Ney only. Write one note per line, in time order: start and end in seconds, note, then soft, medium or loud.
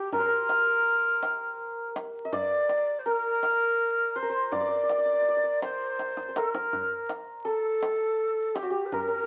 0.00 0.13 G4 medium
0.13 1.92 A#4 medium
2.32 3.00 D5 loud
2.32 2.36 D#5 loud
2.98 3.05 C5 medium
3.05 3.11 C5 medium
3.10 4.17 A#4 loud
4.16 4.53 C5 medium
4.52 5.62 D5 loud
5.63 6.39 C5 medium
6.37 6.49 A4 medium
6.49 7.10 A#4 medium
7.46 8.56 A4 loud
8.55 8.87 G4 medium
8.85 8.94 C5 medium
8.92 9.27 A#4 loud